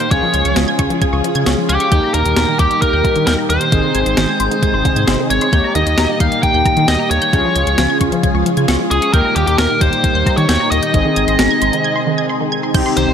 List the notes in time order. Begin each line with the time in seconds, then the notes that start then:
Already playing: C5
0.00 G6, closed hi-hat
0.11 C#2 C#3 F3 G#3 C#4 F4 G#4 C#5, kick, closed hi-hat
0.23 F3
0.34 C#2 G#6, closed hi-hat
0.45 C#2 C#6, closed hi-hat
0.56 C#2 F3, snare, closed hi-hat
0.68 G#6
0.79 C#2 C#6, kick, closed hi-hat
0.90 F3, closed hi-hat
1.02 G#6, kick, closed hi-hat
1.13 C#2 C#6
1.24 F3, closed hi-hat
1.35 C#3 G#6, closed hi-hat
1.46 C#2 C#6, snare, closed hi-hat
1.58 F3
1.69 C#2 G4 G#6, closed hi-hat
1.80 C#6, closed hi-hat
1.92 D#2 A#2 D#3 G3 A#3 D#4 G4 G6, kick, closed hi-hat
2.03 A#5
2.14 D#2 D#3 A#4, closed hi-hat
2.26 D#2, closed hi-hat
2.37 D#2 A#5, snare, closed hi-hat
2.48 D#3
2.59 D#2 G4 G6, kick, closed hi-hat
2.71 closed hi-hat
2.82 A#4, kick, closed hi-hat
2.93 D#2 G6
3.05 A#5, kick, closed hi-hat
3.16 D#3, closed hi-hat
3.27 D#2 A#4 G6, snare, closed hi-hat
3.38 A#5
3.50 D#2 D#3 C5, closed hi-hat
3.61 G6, closed hi-hat
3.72 G#1 C3 G#3 C4 D#4 G#4, kick, closed hi-hat
3.84 D#3
3.95 G#1 G#6, closed hi-hat
4.06 G#1 C6, closed hi-hat
4.17 G#1 D#3, snare, closed hi-hat
4.29 G#6
4.40 G#1 C6, closed hi-hat
4.51 D#3, closed hi-hat
4.63 G#6, kick, closed hi-hat
4.74 G#1 C6
4.85 D#3, kick, closed hi-hat
4.96 G#2 G#6, closed hi-hat
5.08 G#1 C6, snare, closed hi-hat
5.19 D#3
5.30 G#1 C#5 G#6, closed hi-hat
5.41 C6, closed hi-hat
5.53 D#2 A#2 D#3 G3 A#3 D#4 G4 G6, kick, closed hi-hat
5.64 A#5
5.75 D#2 D#3 D#5, closed hi-hat
5.87 D#2, closed hi-hat
5.98 D#2 A#5, snare, closed hi-hat
6.09 D#3
6.20 D#2 F5 G6, kick, closed hi-hat
6.32 closed hi-hat
6.43 G5, kick, closed hi-hat
6.54 D#2 G6
6.66 A#5, kick, closed hi-hat
6.77 D#3, closed hi-hat
6.88 D#2 D#5 G6, snare, closed hi-hat
6.99 A#5
7.11 D#2 D#3 C#5, closed hi-hat
7.22 G6, closed hi-hat
7.33 C#2 C#3 F3 G#3 C#4 F4 G#4, kick, closed hi-hat
7.45 F3
7.56 C#2 G#6, closed hi-hat
7.67 C#2 C#6, closed hi-hat
7.78 C#2 F3, snare, closed hi-hat
7.90 G#6
8.01 C#2 C#6, kick, closed hi-hat
8.12 F3, closed hi-hat
8.23 G#6, kick, closed hi-hat
8.35 C#2 C#6
8.46 F3, closed hi-hat
8.57 C#3 G#6, closed hi-hat
8.68 C#2 C#6, snare, closed hi-hat
8.80 F3
8.91 C#2 G#4 G#6, closed hi-hat
9.02 C#6, closed hi-hat
9.13 D#2 A#2 D#3 G3 A#3 D#4 G4 A#4 G6, kick, closed hi-hat
9.25 A#5
9.36 D#2 D#3 G4, closed hi-hat
9.47 D#2 G4, closed hi-hat
9.58 D#2 A#4 A#5, snare, closed hi-hat
9.70 D#3
9.81 D#2 C5 G6, kick, closed hi-hat
9.93 closed hi-hat
10.04 kick, closed hi-hat
10.15 D#2 G6
10.26 A#5, kick, closed hi-hat
10.37 D#3 C#5, closed hi-hat
10.49 D#2 G6, snare, closed hi-hat
10.60 A#5
10.71 D#2 D#3 D#5, closed hi-hat
10.83 G6, closed hi-hat
10.94 G#1 C3 G#3 C4 D#4 G#4, kick, closed hi-hat
11.05 D#3
11.16 G#1 G#6, closed hi-hat
11.28 G#1 C6, closed hi-hat
11.39 G#1 D#3, snare, closed hi-hat
11.51 G#6
11.62 G#1 C6, closed hi-hat
11.73 D#3, closed hi-hat
11.84 G#6
11.96 C6
12.07 D#3
12.18 G#6
12.29 C6
12.41 D#3
12.52 G#6
12.63 C6
12.74 C2 C3 D#3 G3 C4 D#4 G4 G6, kick, closed hi-hat, crash
12.86 C6
12.97 C2 D#3 C5, closed hi-hat
13.08 C2